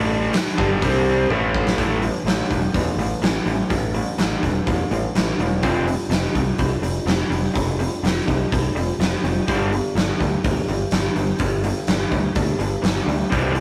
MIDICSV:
0, 0, Header, 1, 6, 480
1, 0, Start_track
1, 0, Key_signature, 0, "minor"
1, 0, Tempo, 481155
1, 1769, Time_signature, 4, 2, 24, 8
1, 13569, End_track
2, 0, Start_track
2, 0, Title_t, "Overdriven electric guitar"
2, 0, Program_c, 0, 29
2, 0, Note_on_c, 0, 45, 89
2, 0, Note_on_c, 0, 52, 92
2, 0, Note_on_c, 0, 57, 110
2, 328, Note_off_c, 0, 45, 0
2, 331, Note_off_c, 0, 52, 0
2, 333, Note_off_c, 0, 57, 0
2, 569, Note_on_c, 0, 43, 93
2, 578, Note_on_c, 0, 50, 91
2, 586, Note_on_c, 0, 55, 94
2, 802, Note_off_c, 0, 43, 0
2, 806, Note_off_c, 0, 50, 0
2, 811, Note_off_c, 0, 55, 0
2, 827, Note_on_c, 0, 48, 85
2, 832, Note_on_c, 0, 55, 106
2, 841, Note_on_c, 0, 60, 107
2, 1291, Note_off_c, 0, 48, 0
2, 1293, Note_off_c, 0, 55, 0
2, 1297, Note_on_c, 0, 45, 92
2, 1298, Note_off_c, 0, 60, 0
2, 1301, Note_on_c, 0, 52, 97
2, 1307, Note_on_c, 0, 57, 101
2, 1766, Note_off_c, 0, 45, 0
2, 1768, Note_off_c, 0, 52, 0
2, 1771, Note_off_c, 0, 57, 0
2, 1776, Note_on_c, 0, 45, 91
2, 1783, Note_on_c, 0, 52, 89
2, 1785, Note_on_c, 0, 57, 101
2, 1998, Note_off_c, 0, 45, 0
2, 2002, Note_off_c, 0, 52, 0
2, 2003, Note_off_c, 0, 57, 0
2, 2017, Note_on_c, 0, 45, 64
2, 2020, Note_on_c, 0, 52, 74
2, 2229, Note_off_c, 0, 45, 0
2, 2231, Note_off_c, 0, 52, 0
2, 2258, Note_on_c, 0, 45, 73
2, 2259, Note_on_c, 0, 52, 81
2, 2470, Note_off_c, 0, 45, 0
2, 2470, Note_off_c, 0, 52, 0
2, 2500, Note_on_c, 0, 52, 63
2, 2501, Note_on_c, 0, 45, 66
2, 2711, Note_off_c, 0, 45, 0
2, 2711, Note_off_c, 0, 52, 0
2, 2746, Note_on_c, 0, 45, 67
2, 2750, Note_on_c, 0, 52, 77
2, 2954, Note_off_c, 0, 45, 0
2, 2955, Note_off_c, 0, 52, 0
2, 2979, Note_on_c, 0, 45, 68
2, 2984, Note_on_c, 0, 52, 79
2, 3190, Note_off_c, 0, 45, 0
2, 3193, Note_off_c, 0, 52, 0
2, 3214, Note_on_c, 0, 45, 64
2, 3214, Note_on_c, 0, 52, 72
2, 3428, Note_off_c, 0, 45, 0
2, 3428, Note_off_c, 0, 52, 0
2, 3452, Note_on_c, 0, 45, 64
2, 3458, Note_on_c, 0, 52, 80
2, 3667, Note_off_c, 0, 45, 0
2, 3670, Note_off_c, 0, 52, 0
2, 3690, Note_on_c, 0, 45, 68
2, 3695, Note_on_c, 0, 52, 80
2, 3906, Note_off_c, 0, 45, 0
2, 3909, Note_off_c, 0, 52, 0
2, 3934, Note_on_c, 0, 45, 69
2, 3936, Note_on_c, 0, 52, 79
2, 4148, Note_off_c, 0, 45, 0
2, 4149, Note_off_c, 0, 52, 0
2, 4172, Note_on_c, 0, 45, 72
2, 4176, Note_on_c, 0, 52, 80
2, 4387, Note_off_c, 0, 45, 0
2, 4389, Note_off_c, 0, 52, 0
2, 4409, Note_on_c, 0, 45, 67
2, 4419, Note_on_c, 0, 52, 72
2, 4626, Note_off_c, 0, 45, 0
2, 4631, Note_off_c, 0, 52, 0
2, 4654, Note_on_c, 0, 52, 80
2, 4656, Note_on_c, 0, 45, 73
2, 4868, Note_off_c, 0, 52, 0
2, 4869, Note_off_c, 0, 45, 0
2, 4897, Note_on_c, 0, 45, 71
2, 4905, Note_on_c, 0, 52, 82
2, 5110, Note_off_c, 0, 45, 0
2, 5114, Note_off_c, 0, 52, 0
2, 5142, Note_on_c, 0, 45, 75
2, 5148, Note_on_c, 0, 52, 77
2, 5352, Note_off_c, 0, 45, 0
2, 5355, Note_off_c, 0, 52, 0
2, 5385, Note_on_c, 0, 45, 66
2, 5390, Note_on_c, 0, 52, 80
2, 5594, Note_off_c, 0, 45, 0
2, 5597, Note_off_c, 0, 52, 0
2, 5612, Note_on_c, 0, 41, 87
2, 5622, Note_on_c, 0, 48, 97
2, 5624, Note_on_c, 0, 53, 88
2, 5837, Note_off_c, 0, 41, 0
2, 5842, Note_off_c, 0, 48, 0
2, 5843, Note_off_c, 0, 53, 0
2, 5854, Note_on_c, 0, 41, 72
2, 5856, Note_on_c, 0, 48, 79
2, 6068, Note_off_c, 0, 41, 0
2, 6070, Note_off_c, 0, 48, 0
2, 6085, Note_on_c, 0, 41, 70
2, 6086, Note_on_c, 0, 48, 88
2, 6304, Note_off_c, 0, 41, 0
2, 6304, Note_off_c, 0, 48, 0
2, 6333, Note_on_c, 0, 41, 61
2, 6337, Note_on_c, 0, 48, 73
2, 6548, Note_off_c, 0, 41, 0
2, 6550, Note_off_c, 0, 48, 0
2, 6573, Note_on_c, 0, 41, 78
2, 6578, Note_on_c, 0, 48, 74
2, 6788, Note_off_c, 0, 41, 0
2, 6791, Note_off_c, 0, 48, 0
2, 6812, Note_on_c, 0, 41, 67
2, 6814, Note_on_c, 0, 48, 79
2, 7027, Note_off_c, 0, 41, 0
2, 7028, Note_off_c, 0, 48, 0
2, 7050, Note_on_c, 0, 41, 68
2, 7050, Note_on_c, 0, 48, 74
2, 7266, Note_off_c, 0, 41, 0
2, 7266, Note_off_c, 0, 48, 0
2, 7282, Note_on_c, 0, 48, 70
2, 7284, Note_on_c, 0, 41, 65
2, 7502, Note_off_c, 0, 48, 0
2, 7503, Note_off_c, 0, 41, 0
2, 7521, Note_on_c, 0, 41, 70
2, 7523, Note_on_c, 0, 48, 82
2, 7742, Note_off_c, 0, 41, 0
2, 7742, Note_off_c, 0, 48, 0
2, 7775, Note_on_c, 0, 41, 63
2, 7776, Note_on_c, 0, 48, 72
2, 7988, Note_off_c, 0, 41, 0
2, 7989, Note_off_c, 0, 48, 0
2, 8020, Note_on_c, 0, 41, 69
2, 8020, Note_on_c, 0, 48, 72
2, 8231, Note_off_c, 0, 41, 0
2, 8231, Note_off_c, 0, 48, 0
2, 8255, Note_on_c, 0, 41, 59
2, 8260, Note_on_c, 0, 48, 74
2, 8469, Note_off_c, 0, 41, 0
2, 8471, Note_off_c, 0, 48, 0
2, 8506, Note_on_c, 0, 41, 80
2, 8507, Note_on_c, 0, 48, 89
2, 8714, Note_off_c, 0, 41, 0
2, 8714, Note_off_c, 0, 48, 0
2, 8732, Note_on_c, 0, 41, 66
2, 8741, Note_on_c, 0, 48, 81
2, 8947, Note_off_c, 0, 41, 0
2, 8951, Note_off_c, 0, 48, 0
2, 8977, Note_on_c, 0, 41, 68
2, 8980, Note_on_c, 0, 48, 68
2, 9189, Note_off_c, 0, 41, 0
2, 9191, Note_off_c, 0, 48, 0
2, 9218, Note_on_c, 0, 41, 63
2, 9219, Note_on_c, 0, 48, 76
2, 9429, Note_off_c, 0, 41, 0
2, 9430, Note_off_c, 0, 48, 0
2, 9456, Note_on_c, 0, 43, 89
2, 9464, Note_on_c, 0, 50, 95
2, 9470, Note_on_c, 0, 55, 92
2, 9678, Note_off_c, 0, 43, 0
2, 9682, Note_off_c, 0, 50, 0
2, 9685, Note_off_c, 0, 55, 0
2, 9700, Note_on_c, 0, 43, 66
2, 9703, Note_on_c, 0, 50, 70
2, 9910, Note_off_c, 0, 43, 0
2, 9912, Note_off_c, 0, 50, 0
2, 9940, Note_on_c, 0, 43, 69
2, 9946, Note_on_c, 0, 50, 85
2, 10150, Note_off_c, 0, 43, 0
2, 10153, Note_off_c, 0, 50, 0
2, 10175, Note_on_c, 0, 50, 64
2, 10176, Note_on_c, 0, 43, 62
2, 10387, Note_off_c, 0, 50, 0
2, 10388, Note_off_c, 0, 43, 0
2, 10418, Note_on_c, 0, 43, 71
2, 10423, Note_on_c, 0, 50, 85
2, 10629, Note_off_c, 0, 43, 0
2, 10631, Note_off_c, 0, 50, 0
2, 10659, Note_on_c, 0, 43, 67
2, 10669, Note_on_c, 0, 50, 77
2, 10869, Note_off_c, 0, 43, 0
2, 10874, Note_off_c, 0, 50, 0
2, 10896, Note_on_c, 0, 43, 65
2, 10896, Note_on_c, 0, 50, 78
2, 11108, Note_off_c, 0, 43, 0
2, 11108, Note_off_c, 0, 50, 0
2, 11127, Note_on_c, 0, 50, 72
2, 11128, Note_on_c, 0, 43, 66
2, 11343, Note_off_c, 0, 43, 0
2, 11343, Note_off_c, 0, 50, 0
2, 11369, Note_on_c, 0, 43, 68
2, 11370, Note_on_c, 0, 50, 82
2, 11584, Note_off_c, 0, 43, 0
2, 11584, Note_off_c, 0, 50, 0
2, 11611, Note_on_c, 0, 43, 69
2, 11617, Note_on_c, 0, 50, 70
2, 11825, Note_off_c, 0, 43, 0
2, 11828, Note_off_c, 0, 50, 0
2, 11851, Note_on_c, 0, 43, 69
2, 11857, Note_on_c, 0, 50, 80
2, 12064, Note_off_c, 0, 43, 0
2, 12068, Note_off_c, 0, 50, 0
2, 12080, Note_on_c, 0, 43, 64
2, 12081, Note_on_c, 0, 50, 70
2, 12299, Note_off_c, 0, 43, 0
2, 12299, Note_off_c, 0, 50, 0
2, 12330, Note_on_c, 0, 43, 66
2, 12333, Note_on_c, 0, 50, 78
2, 12544, Note_off_c, 0, 43, 0
2, 12546, Note_off_c, 0, 50, 0
2, 12558, Note_on_c, 0, 43, 68
2, 12558, Note_on_c, 0, 50, 83
2, 12775, Note_off_c, 0, 43, 0
2, 12778, Note_off_c, 0, 50, 0
2, 12787, Note_on_c, 0, 43, 63
2, 12791, Note_on_c, 0, 50, 75
2, 13013, Note_off_c, 0, 43, 0
2, 13015, Note_off_c, 0, 50, 0
2, 13029, Note_on_c, 0, 43, 70
2, 13032, Note_on_c, 0, 50, 74
2, 13254, Note_off_c, 0, 43, 0
2, 13255, Note_off_c, 0, 50, 0
2, 13267, Note_on_c, 0, 48, 97
2, 13278, Note_on_c, 0, 52, 99
2, 13286, Note_on_c, 0, 55, 98
2, 13498, Note_off_c, 0, 48, 0
2, 13499, Note_off_c, 0, 52, 0
2, 13509, Note_on_c, 0, 48, 68
2, 13511, Note_on_c, 0, 52, 82
2, 13512, Note_off_c, 0, 55, 0
2, 13569, Note_off_c, 0, 48, 0
2, 13569, Note_off_c, 0, 52, 0
2, 13569, End_track
3, 0, Start_track
3, 0, Title_t, "Fingered electric bass"
3, 0, Program_c, 1, 33
3, 0, Note_on_c, 1, 33, 82
3, 302, Note_off_c, 1, 33, 0
3, 582, Note_on_c, 1, 31, 90
3, 799, Note_off_c, 1, 31, 0
3, 822, Note_on_c, 1, 36, 78
3, 1263, Note_off_c, 1, 36, 0
3, 1297, Note_on_c, 1, 33, 98
3, 1739, Note_off_c, 1, 33, 0
3, 1771, Note_on_c, 1, 33, 86
3, 2084, Note_off_c, 1, 33, 0
3, 2238, Note_on_c, 1, 33, 85
3, 2398, Note_off_c, 1, 33, 0
3, 2499, Note_on_c, 1, 28, 85
3, 2653, Note_off_c, 1, 28, 0
3, 2730, Note_on_c, 1, 40, 73
3, 2887, Note_off_c, 1, 40, 0
3, 2961, Note_on_c, 1, 33, 85
3, 3120, Note_off_c, 1, 33, 0
3, 3207, Note_on_c, 1, 33, 91
3, 3365, Note_off_c, 1, 33, 0
3, 3449, Note_on_c, 1, 33, 82
3, 3606, Note_off_c, 1, 33, 0
3, 3696, Note_on_c, 1, 33, 84
3, 4008, Note_off_c, 1, 33, 0
3, 4174, Note_on_c, 1, 33, 81
3, 4330, Note_off_c, 1, 33, 0
3, 4413, Note_on_c, 1, 28, 85
3, 4569, Note_off_c, 1, 28, 0
3, 4659, Note_on_c, 1, 40, 78
3, 4813, Note_off_c, 1, 40, 0
3, 4900, Note_on_c, 1, 33, 92
3, 5054, Note_off_c, 1, 33, 0
3, 5141, Note_on_c, 1, 33, 93
3, 5294, Note_off_c, 1, 33, 0
3, 5367, Note_on_c, 1, 28, 80
3, 5612, Note_off_c, 1, 28, 0
3, 5612, Note_on_c, 1, 29, 83
3, 5925, Note_off_c, 1, 29, 0
3, 6077, Note_on_c, 1, 29, 88
3, 6238, Note_off_c, 1, 29, 0
3, 6333, Note_on_c, 1, 36, 83
3, 6489, Note_off_c, 1, 36, 0
3, 6572, Note_on_c, 1, 36, 75
3, 6728, Note_off_c, 1, 36, 0
3, 6799, Note_on_c, 1, 29, 83
3, 6959, Note_off_c, 1, 29, 0
3, 7035, Note_on_c, 1, 29, 94
3, 7197, Note_off_c, 1, 29, 0
3, 7281, Note_on_c, 1, 29, 88
3, 7441, Note_off_c, 1, 29, 0
3, 7536, Note_on_c, 1, 29, 83
3, 7848, Note_off_c, 1, 29, 0
3, 8011, Note_on_c, 1, 29, 82
3, 8167, Note_off_c, 1, 29, 0
3, 8258, Note_on_c, 1, 36, 82
3, 8412, Note_off_c, 1, 36, 0
3, 8500, Note_on_c, 1, 36, 77
3, 8653, Note_off_c, 1, 36, 0
3, 8726, Note_on_c, 1, 29, 91
3, 8884, Note_off_c, 1, 29, 0
3, 8965, Note_on_c, 1, 29, 91
3, 9123, Note_off_c, 1, 29, 0
3, 9212, Note_on_c, 1, 29, 79
3, 9368, Note_off_c, 1, 29, 0
3, 9455, Note_on_c, 1, 31, 83
3, 9766, Note_off_c, 1, 31, 0
3, 9925, Note_on_c, 1, 31, 86
3, 10083, Note_off_c, 1, 31, 0
3, 10177, Note_on_c, 1, 38, 84
3, 10330, Note_off_c, 1, 38, 0
3, 10418, Note_on_c, 1, 38, 72
3, 10571, Note_off_c, 1, 38, 0
3, 10646, Note_on_c, 1, 31, 84
3, 10803, Note_off_c, 1, 31, 0
3, 10890, Note_on_c, 1, 31, 91
3, 11046, Note_off_c, 1, 31, 0
3, 11132, Note_on_c, 1, 31, 83
3, 11287, Note_off_c, 1, 31, 0
3, 11367, Note_on_c, 1, 31, 87
3, 11681, Note_off_c, 1, 31, 0
3, 11855, Note_on_c, 1, 31, 86
3, 12009, Note_off_c, 1, 31, 0
3, 12085, Note_on_c, 1, 38, 87
3, 12243, Note_off_c, 1, 38, 0
3, 12324, Note_on_c, 1, 38, 83
3, 12482, Note_off_c, 1, 38, 0
3, 12558, Note_on_c, 1, 31, 87
3, 12718, Note_off_c, 1, 31, 0
3, 12802, Note_on_c, 1, 31, 93
3, 12960, Note_off_c, 1, 31, 0
3, 13034, Note_on_c, 1, 38, 91
3, 13195, Note_off_c, 1, 38, 0
3, 13287, Note_on_c, 1, 36, 87
3, 13569, Note_off_c, 1, 36, 0
3, 13569, End_track
4, 0, Start_track
4, 0, Title_t, "Muted fingered electric bass strokes"
4, 341, Note_on_c, 9, 29, 41
4, 441, Note_off_c, 9, 29, 0
4, 13569, End_track
5, 0, Start_track
5, 0, Title_t, "Muted overdriven electric guitar strokes"
5, 347, Note_on_c, 9, 29, 57
5, 446, Note_off_c, 9, 29, 0
5, 13569, End_track
6, 0, Start_track
6, 0, Title_t, "Drums"
6, 330, Note_on_c, 9, 46, 54
6, 341, Note_on_c, 9, 38, 101
6, 430, Note_off_c, 9, 46, 0
6, 441, Note_off_c, 9, 38, 0
6, 581, Note_on_c, 9, 36, 98
6, 681, Note_off_c, 9, 36, 0
6, 820, Note_on_c, 9, 46, 51
6, 821, Note_on_c, 9, 36, 104
6, 920, Note_off_c, 9, 46, 0
6, 921, Note_off_c, 9, 36, 0
6, 1301, Note_on_c, 9, 36, 60
6, 1400, Note_off_c, 9, 36, 0
6, 1541, Note_on_c, 9, 36, 90
6, 1641, Note_off_c, 9, 36, 0
6, 1665, Note_on_c, 9, 38, 87
6, 1765, Note_off_c, 9, 38, 0
6, 1775, Note_on_c, 9, 46, 62
6, 1777, Note_on_c, 9, 36, 92
6, 1875, Note_off_c, 9, 46, 0
6, 1877, Note_off_c, 9, 36, 0
6, 2016, Note_on_c, 9, 46, 51
6, 2115, Note_off_c, 9, 46, 0
6, 2265, Note_on_c, 9, 46, 65
6, 2276, Note_on_c, 9, 38, 106
6, 2365, Note_off_c, 9, 46, 0
6, 2376, Note_off_c, 9, 38, 0
6, 2500, Note_on_c, 9, 36, 77
6, 2505, Note_on_c, 9, 46, 49
6, 2600, Note_off_c, 9, 36, 0
6, 2605, Note_off_c, 9, 46, 0
6, 2738, Note_on_c, 9, 36, 103
6, 2739, Note_on_c, 9, 46, 66
6, 2837, Note_off_c, 9, 36, 0
6, 2839, Note_off_c, 9, 46, 0
6, 2986, Note_on_c, 9, 46, 51
6, 3085, Note_off_c, 9, 46, 0
6, 3220, Note_on_c, 9, 46, 67
6, 3231, Note_on_c, 9, 38, 110
6, 3320, Note_off_c, 9, 46, 0
6, 3331, Note_off_c, 9, 38, 0
6, 3460, Note_on_c, 9, 46, 50
6, 3560, Note_off_c, 9, 46, 0
6, 3693, Note_on_c, 9, 46, 62
6, 3694, Note_on_c, 9, 36, 101
6, 3792, Note_off_c, 9, 46, 0
6, 3794, Note_off_c, 9, 36, 0
6, 3935, Note_on_c, 9, 46, 48
6, 4035, Note_off_c, 9, 46, 0
6, 4174, Note_on_c, 9, 46, 60
6, 4185, Note_on_c, 9, 38, 101
6, 4274, Note_off_c, 9, 46, 0
6, 4285, Note_off_c, 9, 38, 0
6, 4419, Note_on_c, 9, 36, 75
6, 4421, Note_on_c, 9, 46, 50
6, 4519, Note_off_c, 9, 36, 0
6, 4521, Note_off_c, 9, 46, 0
6, 4659, Note_on_c, 9, 36, 109
6, 4659, Note_on_c, 9, 46, 64
6, 4759, Note_off_c, 9, 36, 0
6, 4759, Note_off_c, 9, 46, 0
6, 4900, Note_on_c, 9, 46, 47
6, 5000, Note_off_c, 9, 46, 0
6, 5141, Note_on_c, 9, 46, 61
6, 5152, Note_on_c, 9, 38, 109
6, 5241, Note_off_c, 9, 46, 0
6, 5252, Note_off_c, 9, 38, 0
6, 5381, Note_on_c, 9, 46, 46
6, 5481, Note_off_c, 9, 46, 0
6, 5614, Note_on_c, 9, 46, 62
6, 5619, Note_on_c, 9, 36, 97
6, 5714, Note_off_c, 9, 46, 0
6, 5719, Note_off_c, 9, 36, 0
6, 5861, Note_on_c, 9, 46, 47
6, 5960, Note_off_c, 9, 46, 0
6, 6095, Note_on_c, 9, 46, 60
6, 6106, Note_on_c, 9, 38, 98
6, 6194, Note_off_c, 9, 46, 0
6, 6205, Note_off_c, 9, 38, 0
6, 6335, Note_on_c, 9, 46, 50
6, 6338, Note_on_c, 9, 36, 71
6, 6435, Note_off_c, 9, 46, 0
6, 6438, Note_off_c, 9, 36, 0
6, 6568, Note_on_c, 9, 46, 68
6, 6576, Note_on_c, 9, 36, 102
6, 6668, Note_off_c, 9, 46, 0
6, 6675, Note_off_c, 9, 36, 0
6, 6815, Note_on_c, 9, 46, 53
6, 6915, Note_off_c, 9, 46, 0
6, 7056, Note_on_c, 9, 46, 70
6, 7067, Note_on_c, 9, 38, 106
6, 7156, Note_off_c, 9, 46, 0
6, 7167, Note_off_c, 9, 38, 0
6, 7301, Note_on_c, 9, 46, 51
6, 7401, Note_off_c, 9, 46, 0
6, 7535, Note_on_c, 9, 46, 68
6, 7537, Note_on_c, 9, 36, 104
6, 7635, Note_off_c, 9, 46, 0
6, 7637, Note_off_c, 9, 36, 0
6, 7778, Note_on_c, 9, 46, 54
6, 7877, Note_off_c, 9, 46, 0
6, 8027, Note_on_c, 9, 46, 62
6, 8038, Note_on_c, 9, 38, 97
6, 8127, Note_off_c, 9, 46, 0
6, 8138, Note_off_c, 9, 38, 0
6, 8261, Note_on_c, 9, 36, 75
6, 8265, Note_on_c, 9, 46, 51
6, 8361, Note_off_c, 9, 36, 0
6, 8364, Note_off_c, 9, 46, 0
6, 8503, Note_on_c, 9, 36, 105
6, 8507, Note_on_c, 9, 46, 61
6, 8603, Note_off_c, 9, 36, 0
6, 8607, Note_off_c, 9, 46, 0
6, 8746, Note_on_c, 9, 46, 52
6, 8846, Note_off_c, 9, 46, 0
6, 8984, Note_on_c, 9, 46, 65
6, 8995, Note_on_c, 9, 38, 100
6, 9083, Note_off_c, 9, 46, 0
6, 9094, Note_off_c, 9, 38, 0
6, 9223, Note_on_c, 9, 46, 46
6, 9322, Note_off_c, 9, 46, 0
6, 9458, Note_on_c, 9, 46, 60
6, 9459, Note_on_c, 9, 36, 93
6, 9558, Note_off_c, 9, 46, 0
6, 9559, Note_off_c, 9, 36, 0
6, 9702, Note_on_c, 9, 46, 48
6, 9801, Note_off_c, 9, 46, 0
6, 9941, Note_on_c, 9, 46, 57
6, 9952, Note_on_c, 9, 38, 94
6, 10041, Note_off_c, 9, 46, 0
6, 10052, Note_off_c, 9, 38, 0
6, 10181, Note_on_c, 9, 36, 75
6, 10189, Note_on_c, 9, 46, 46
6, 10281, Note_off_c, 9, 36, 0
6, 10288, Note_off_c, 9, 46, 0
6, 10418, Note_on_c, 9, 46, 64
6, 10420, Note_on_c, 9, 36, 112
6, 10518, Note_off_c, 9, 46, 0
6, 10520, Note_off_c, 9, 36, 0
6, 10658, Note_on_c, 9, 46, 47
6, 10758, Note_off_c, 9, 46, 0
6, 10885, Note_on_c, 9, 46, 69
6, 10896, Note_on_c, 9, 38, 104
6, 10984, Note_off_c, 9, 46, 0
6, 10995, Note_off_c, 9, 38, 0
6, 11132, Note_on_c, 9, 46, 50
6, 11232, Note_off_c, 9, 46, 0
6, 11359, Note_on_c, 9, 46, 63
6, 11371, Note_on_c, 9, 36, 101
6, 11458, Note_off_c, 9, 46, 0
6, 11471, Note_off_c, 9, 36, 0
6, 11608, Note_on_c, 9, 46, 56
6, 11708, Note_off_c, 9, 46, 0
6, 11843, Note_on_c, 9, 46, 68
6, 11854, Note_on_c, 9, 38, 102
6, 11943, Note_off_c, 9, 46, 0
6, 11954, Note_off_c, 9, 38, 0
6, 12086, Note_on_c, 9, 46, 47
6, 12089, Note_on_c, 9, 36, 76
6, 12185, Note_off_c, 9, 46, 0
6, 12189, Note_off_c, 9, 36, 0
6, 12324, Note_on_c, 9, 46, 66
6, 12329, Note_on_c, 9, 36, 103
6, 12424, Note_off_c, 9, 46, 0
6, 12429, Note_off_c, 9, 36, 0
6, 12567, Note_on_c, 9, 46, 51
6, 12667, Note_off_c, 9, 46, 0
6, 12806, Note_on_c, 9, 46, 71
6, 12817, Note_on_c, 9, 38, 104
6, 12906, Note_off_c, 9, 46, 0
6, 12917, Note_off_c, 9, 38, 0
6, 13056, Note_on_c, 9, 46, 46
6, 13156, Note_off_c, 9, 46, 0
6, 13289, Note_on_c, 9, 46, 60
6, 13290, Note_on_c, 9, 36, 109
6, 13389, Note_off_c, 9, 46, 0
6, 13390, Note_off_c, 9, 36, 0
6, 13518, Note_on_c, 9, 46, 48
6, 13569, Note_off_c, 9, 46, 0
6, 13569, End_track
0, 0, End_of_file